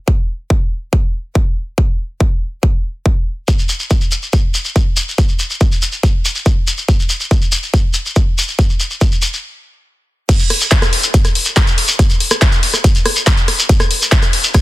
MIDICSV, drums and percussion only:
0, 0, Header, 1, 3, 480
1, 0, Start_track
1, 0, Tempo, 425532
1, 87, Time_signature, 4, 2, 24, 8
1, 16485, End_track
2, 0, Start_track
2, 0, Title_t, "Shekere"
2, 3926, Note_on_c, 9, 82, 51
2, 4039, Note_off_c, 9, 82, 0
2, 4046, Note_on_c, 9, 82, 35
2, 4158, Note_off_c, 9, 82, 0
2, 4159, Note_on_c, 9, 82, 92
2, 4272, Note_off_c, 9, 82, 0
2, 4281, Note_on_c, 9, 82, 40
2, 4393, Note_off_c, 9, 82, 0
2, 4403, Note_on_c, 9, 82, 53
2, 4516, Note_off_c, 9, 82, 0
2, 4524, Note_on_c, 9, 82, 34
2, 4637, Note_off_c, 9, 82, 0
2, 4642, Note_on_c, 9, 82, 92
2, 4755, Note_off_c, 9, 82, 0
2, 4763, Note_on_c, 9, 82, 36
2, 4876, Note_off_c, 9, 82, 0
2, 4884, Note_on_c, 9, 82, 54
2, 4997, Note_off_c, 9, 82, 0
2, 5124, Note_on_c, 9, 82, 81
2, 5237, Note_off_c, 9, 82, 0
2, 5240, Note_on_c, 9, 82, 38
2, 5353, Note_off_c, 9, 82, 0
2, 5368, Note_on_c, 9, 82, 52
2, 5481, Note_off_c, 9, 82, 0
2, 5602, Note_on_c, 9, 82, 90
2, 5715, Note_off_c, 9, 82, 0
2, 5735, Note_on_c, 9, 82, 40
2, 5848, Note_off_c, 9, 82, 0
2, 5848, Note_on_c, 9, 82, 48
2, 5961, Note_off_c, 9, 82, 0
2, 5961, Note_on_c, 9, 82, 34
2, 6074, Note_off_c, 9, 82, 0
2, 6081, Note_on_c, 9, 82, 82
2, 6194, Note_off_c, 9, 82, 0
2, 6206, Note_on_c, 9, 82, 38
2, 6319, Note_off_c, 9, 82, 0
2, 6325, Note_on_c, 9, 82, 47
2, 6438, Note_off_c, 9, 82, 0
2, 6450, Note_on_c, 9, 82, 36
2, 6563, Note_off_c, 9, 82, 0
2, 6565, Note_on_c, 9, 82, 90
2, 6676, Note_off_c, 9, 82, 0
2, 6676, Note_on_c, 9, 82, 35
2, 6789, Note_off_c, 9, 82, 0
2, 6813, Note_on_c, 9, 82, 46
2, 6926, Note_off_c, 9, 82, 0
2, 7051, Note_on_c, 9, 82, 91
2, 7163, Note_off_c, 9, 82, 0
2, 7163, Note_on_c, 9, 82, 40
2, 7276, Note_off_c, 9, 82, 0
2, 7285, Note_on_c, 9, 82, 48
2, 7398, Note_off_c, 9, 82, 0
2, 7528, Note_on_c, 9, 82, 81
2, 7640, Note_off_c, 9, 82, 0
2, 7643, Note_on_c, 9, 82, 40
2, 7756, Note_off_c, 9, 82, 0
2, 7772, Note_on_c, 9, 82, 46
2, 7885, Note_off_c, 9, 82, 0
2, 7890, Note_on_c, 9, 82, 35
2, 8002, Note_off_c, 9, 82, 0
2, 8002, Note_on_c, 9, 82, 80
2, 8114, Note_off_c, 9, 82, 0
2, 8122, Note_on_c, 9, 82, 36
2, 8235, Note_off_c, 9, 82, 0
2, 8255, Note_on_c, 9, 82, 52
2, 8366, Note_off_c, 9, 82, 0
2, 8366, Note_on_c, 9, 82, 34
2, 8478, Note_off_c, 9, 82, 0
2, 8482, Note_on_c, 9, 82, 92
2, 8594, Note_off_c, 9, 82, 0
2, 8605, Note_on_c, 9, 82, 38
2, 8718, Note_off_c, 9, 82, 0
2, 8730, Note_on_c, 9, 82, 52
2, 8843, Note_off_c, 9, 82, 0
2, 8952, Note_on_c, 9, 82, 89
2, 9064, Note_off_c, 9, 82, 0
2, 9088, Note_on_c, 9, 82, 36
2, 9201, Note_off_c, 9, 82, 0
2, 9203, Note_on_c, 9, 82, 46
2, 9316, Note_off_c, 9, 82, 0
2, 9454, Note_on_c, 9, 82, 87
2, 9566, Note_off_c, 9, 82, 0
2, 9566, Note_on_c, 9, 82, 35
2, 9679, Note_off_c, 9, 82, 0
2, 9689, Note_on_c, 9, 82, 51
2, 9802, Note_off_c, 9, 82, 0
2, 9808, Note_on_c, 9, 82, 32
2, 9921, Note_off_c, 9, 82, 0
2, 9926, Note_on_c, 9, 82, 82
2, 10039, Note_off_c, 9, 82, 0
2, 10043, Note_on_c, 9, 82, 37
2, 10155, Note_off_c, 9, 82, 0
2, 10165, Note_on_c, 9, 82, 49
2, 10278, Note_off_c, 9, 82, 0
2, 10286, Note_on_c, 9, 82, 38
2, 10398, Note_off_c, 9, 82, 0
2, 10398, Note_on_c, 9, 82, 88
2, 10511, Note_off_c, 9, 82, 0
2, 10529, Note_on_c, 9, 82, 36
2, 10641, Note_off_c, 9, 82, 0
2, 11621, Note_on_c, 9, 82, 68
2, 11726, Note_off_c, 9, 82, 0
2, 11726, Note_on_c, 9, 82, 39
2, 11839, Note_off_c, 9, 82, 0
2, 11969, Note_on_c, 9, 82, 87
2, 12082, Note_off_c, 9, 82, 0
2, 12085, Note_on_c, 9, 82, 63
2, 12198, Note_off_c, 9, 82, 0
2, 12209, Note_on_c, 9, 82, 43
2, 12322, Note_off_c, 9, 82, 0
2, 12446, Note_on_c, 9, 82, 87
2, 12559, Note_off_c, 9, 82, 0
2, 12567, Note_on_c, 9, 82, 66
2, 12680, Note_off_c, 9, 82, 0
2, 12686, Note_on_c, 9, 82, 38
2, 12799, Note_off_c, 9, 82, 0
2, 12920, Note_on_c, 9, 82, 74
2, 13033, Note_off_c, 9, 82, 0
2, 13045, Note_on_c, 9, 82, 63
2, 13158, Note_off_c, 9, 82, 0
2, 13167, Note_on_c, 9, 82, 39
2, 13280, Note_off_c, 9, 82, 0
2, 13402, Note_on_c, 9, 82, 88
2, 13514, Note_off_c, 9, 82, 0
2, 13531, Note_on_c, 9, 82, 66
2, 13644, Note_off_c, 9, 82, 0
2, 13646, Note_on_c, 9, 82, 40
2, 13759, Note_off_c, 9, 82, 0
2, 13883, Note_on_c, 9, 82, 78
2, 13996, Note_off_c, 9, 82, 0
2, 14005, Note_on_c, 9, 82, 67
2, 14118, Note_off_c, 9, 82, 0
2, 14123, Note_on_c, 9, 82, 38
2, 14236, Note_off_c, 9, 82, 0
2, 14370, Note_on_c, 9, 82, 90
2, 14483, Note_off_c, 9, 82, 0
2, 14492, Note_on_c, 9, 82, 70
2, 14605, Note_off_c, 9, 82, 0
2, 14609, Note_on_c, 9, 82, 38
2, 14722, Note_off_c, 9, 82, 0
2, 14845, Note_on_c, 9, 82, 76
2, 14958, Note_off_c, 9, 82, 0
2, 14969, Note_on_c, 9, 82, 71
2, 15082, Note_off_c, 9, 82, 0
2, 15083, Note_on_c, 9, 82, 40
2, 15196, Note_off_c, 9, 82, 0
2, 15335, Note_on_c, 9, 82, 84
2, 15447, Note_off_c, 9, 82, 0
2, 15450, Note_on_c, 9, 82, 72
2, 15563, Note_off_c, 9, 82, 0
2, 15565, Note_on_c, 9, 82, 45
2, 15678, Note_off_c, 9, 82, 0
2, 15817, Note_on_c, 9, 82, 93
2, 15929, Note_off_c, 9, 82, 0
2, 16046, Note_on_c, 9, 82, 45
2, 16158, Note_off_c, 9, 82, 0
2, 16286, Note_on_c, 9, 82, 79
2, 16399, Note_off_c, 9, 82, 0
2, 16404, Note_on_c, 9, 82, 71
2, 16485, Note_off_c, 9, 82, 0
2, 16485, End_track
3, 0, Start_track
3, 0, Title_t, "Drums"
3, 87, Note_on_c, 9, 36, 124
3, 199, Note_off_c, 9, 36, 0
3, 567, Note_on_c, 9, 36, 121
3, 679, Note_off_c, 9, 36, 0
3, 1047, Note_on_c, 9, 36, 119
3, 1159, Note_off_c, 9, 36, 0
3, 1526, Note_on_c, 9, 36, 124
3, 1639, Note_off_c, 9, 36, 0
3, 2006, Note_on_c, 9, 36, 117
3, 2119, Note_off_c, 9, 36, 0
3, 2486, Note_on_c, 9, 36, 119
3, 2599, Note_off_c, 9, 36, 0
3, 2966, Note_on_c, 9, 36, 119
3, 3079, Note_off_c, 9, 36, 0
3, 3446, Note_on_c, 9, 36, 120
3, 3559, Note_off_c, 9, 36, 0
3, 3926, Note_on_c, 9, 36, 117
3, 4039, Note_off_c, 9, 36, 0
3, 4406, Note_on_c, 9, 36, 114
3, 4519, Note_off_c, 9, 36, 0
3, 4886, Note_on_c, 9, 36, 115
3, 4999, Note_off_c, 9, 36, 0
3, 5366, Note_on_c, 9, 36, 117
3, 5479, Note_off_c, 9, 36, 0
3, 5846, Note_on_c, 9, 36, 112
3, 5959, Note_off_c, 9, 36, 0
3, 6326, Note_on_c, 9, 36, 108
3, 6439, Note_off_c, 9, 36, 0
3, 6806, Note_on_c, 9, 36, 112
3, 6919, Note_off_c, 9, 36, 0
3, 7286, Note_on_c, 9, 36, 114
3, 7399, Note_off_c, 9, 36, 0
3, 7766, Note_on_c, 9, 36, 110
3, 7879, Note_off_c, 9, 36, 0
3, 8246, Note_on_c, 9, 36, 108
3, 8359, Note_off_c, 9, 36, 0
3, 8726, Note_on_c, 9, 36, 108
3, 8839, Note_off_c, 9, 36, 0
3, 9206, Note_on_c, 9, 36, 109
3, 9319, Note_off_c, 9, 36, 0
3, 9686, Note_on_c, 9, 36, 116
3, 9799, Note_off_c, 9, 36, 0
3, 10166, Note_on_c, 9, 36, 111
3, 10279, Note_off_c, 9, 36, 0
3, 11606, Note_on_c, 9, 36, 122
3, 11606, Note_on_c, 9, 42, 98
3, 11606, Note_on_c, 9, 49, 108
3, 11719, Note_off_c, 9, 36, 0
3, 11719, Note_off_c, 9, 42, 0
3, 11719, Note_off_c, 9, 49, 0
3, 11726, Note_on_c, 9, 42, 43
3, 11839, Note_off_c, 9, 42, 0
3, 11846, Note_on_c, 9, 37, 41
3, 11846, Note_on_c, 9, 46, 109
3, 11959, Note_off_c, 9, 37, 0
3, 11959, Note_off_c, 9, 46, 0
3, 11966, Note_on_c, 9, 42, 42
3, 12079, Note_off_c, 9, 42, 0
3, 12086, Note_on_c, 9, 36, 120
3, 12086, Note_on_c, 9, 39, 125
3, 12086, Note_on_c, 9, 42, 97
3, 12199, Note_off_c, 9, 36, 0
3, 12199, Note_off_c, 9, 39, 0
3, 12199, Note_off_c, 9, 42, 0
3, 12206, Note_on_c, 9, 37, 81
3, 12206, Note_on_c, 9, 42, 40
3, 12319, Note_off_c, 9, 37, 0
3, 12319, Note_off_c, 9, 42, 0
3, 12326, Note_on_c, 9, 46, 106
3, 12439, Note_off_c, 9, 46, 0
3, 12446, Note_on_c, 9, 42, 41
3, 12559, Note_off_c, 9, 42, 0
3, 12566, Note_on_c, 9, 36, 117
3, 12567, Note_on_c, 9, 42, 100
3, 12679, Note_off_c, 9, 36, 0
3, 12679, Note_off_c, 9, 42, 0
3, 12687, Note_on_c, 9, 37, 40
3, 12687, Note_on_c, 9, 42, 41
3, 12799, Note_off_c, 9, 37, 0
3, 12799, Note_off_c, 9, 42, 0
3, 12807, Note_on_c, 9, 46, 105
3, 12919, Note_off_c, 9, 46, 0
3, 12927, Note_on_c, 9, 42, 42
3, 13039, Note_off_c, 9, 42, 0
3, 13046, Note_on_c, 9, 36, 121
3, 13046, Note_on_c, 9, 37, 79
3, 13046, Note_on_c, 9, 39, 126
3, 13046, Note_on_c, 9, 42, 96
3, 13159, Note_off_c, 9, 36, 0
3, 13159, Note_off_c, 9, 37, 0
3, 13159, Note_off_c, 9, 39, 0
3, 13159, Note_off_c, 9, 42, 0
3, 13167, Note_on_c, 9, 42, 42
3, 13279, Note_off_c, 9, 42, 0
3, 13286, Note_on_c, 9, 46, 112
3, 13399, Note_off_c, 9, 46, 0
3, 13407, Note_on_c, 9, 42, 41
3, 13519, Note_off_c, 9, 42, 0
3, 13526, Note_on_c, 9, 36, 127
3, 13527, Note_on_c, 9, 37, 39
3, 13527, Note_on_c, 9, 42, 95
3, 13639, Note_off_c, 9, 36, 0
3, 13639, Note_off_c, 9, 37, 0
3, 13639, Note_off_c, 9, 42, 0
3, 13647, Note_on_c, 9, 42, 41
3, 13759, Note_off_c, 9, 42, 0
3, 13766, Note_on_c, 9, 46, 113
3, 13879, Note_off_c, 9, 46, 0
3, 13886, Note_on_c, 9, 37, 80
3, 13999, Note_off_c, 9, 37, 0
3, 14006, Note_on_c, 9, 36, 121
3, 14006, Note_on_c, 9, 39, 123
3, 14006, Note_on_c, 9, 42, 94
3, 14119, Note_off_c, 9, 36, 0
3, 14119, Note_off_c, 9, 39, 0
3, 14119, Note_off_c, 9, 42, 0
3, 14126, Note_on_c, 9, 42, 39
3, 14239, Note_off_c, 9, 42, 0
3, 14246, Note_on_c, 9, 46, 112
3, 14359, Note_off_c, 9, 46, 0
3, 14366, Note_on_c, 9, 37, 39
3, 14366, Note_on_c, 9, 42, 41
3, 14479, Note_off_c, 9, 37, 0
3, 14479, Note_off_c, 9, 42, 0
3, 14486, Note_on_c, 9, 36, 121
3, 14486, Note_on_c, 9, 42, 95
3, 14599, Note_off_c, 9, 36, 0
3, 14599, Note_off_c, 9, 42, 0
3, 14606, Note_on_c, 9, 42, 40
3, 14719, Note_off_c, 9, 42, 0
3, 14726, Note_on_c, 9, 37, 76
3, 14726, Note_on_c, 9, 46, 113
3, 14839, Note_off_c, 9, 37, 0
3, 14839, Note_off_c, 9, 46, 0
3, 14846, Note_on_c, 9, 42, 41
3, 14959, Note_off_c, 9, 42, 0
3, 14966, Note_on_c, 9, 36, 127
3, 14966, Note_on_c, 9, 39, 124
3, 14966, Note_on_c, 9, 42, 95
3, 15079, Note_off_c, 9, 36, 0
3, 15079, Note_off_c, 9, 39, 0
3, 15079, Note_off_c, 9, 42, 0
3, 15086, Note_on_c, 9, 42, 42
3, 15199, Note_off_c, 9, 42, 0
3, 15206, Note_on_c, 9, 37, 39
3, 15206, Note_on_c, 9, 46, 112
3, 15319, Note_off_c, 9, 37, 0
3, 15319, Note_off_c, 9, 46, 0
3, 15326, Note_on_c, 9, 42, 42
3, 15439, Note_off_c, 9, 42, 0
3, 15446, Note_on_c, 9, 36, 127
3, 15446, Note_on_c, 9, 42, 89
3, 15559, Note_off_c, 9, 36, 0
3, 15559, Note_off_c, 9, 42, 0
3, 15566, Note_on_c, 9, 37, 80
3, 15566, Note_on_c, 9, 42, 40
3, 15679, Note_off_c, 9, 37, 0
3, 15679, Note_off_c, 9, 42, 0
3, 15686, Note_on_c, 9, 46, 115
3, 15799, Note_off_c, 9, 46, 0
3, 15806, Note_on_c, 9, 42, 40
3, 15919, Note_off_c, 9, 42, 0
3, 15926, Note_on_c, 9, 36, 126
3, 15926, Note_on_c, 9, 39, 126
3, 15926, Note_on_c, 9, 42, 91
3, 16039, Note_off_c, 9, 36, 0
3, 16039, Note_off_c, 9, 39, 0
3, 16039, Note_off_c, 9, 42, 0
3, 16046, Note_on_c, 9, 37, 37
3, 16046, Note_on_c, 9, 42, 37
3, 16159, Note_off_c, 9, 37, 0
3, 16159, Note_off_c, 9, 42, 0
3, 16166, Note_on_c, 9, 46, 111
3, 16279, Note_off_c, 9, 46, 0
3, 16287, Note_on_c, 9, 42, 40
3, 16399, Note_off_c, 9, 42, 0
3, 16406, Note_on_c, 9, 36, 125
3, 16407, Note_on_c, 9, 37, 77
3, 16407, Note_on_c, 9, 42, 95
3, 16485, Note_off_c, 9, 36, 0
3, 16485, Note_off_c, 9, 37, 0
3, 16485, Note_off_c, 9, 42, 0
3, 16485, End_track
0, 0, End_of_file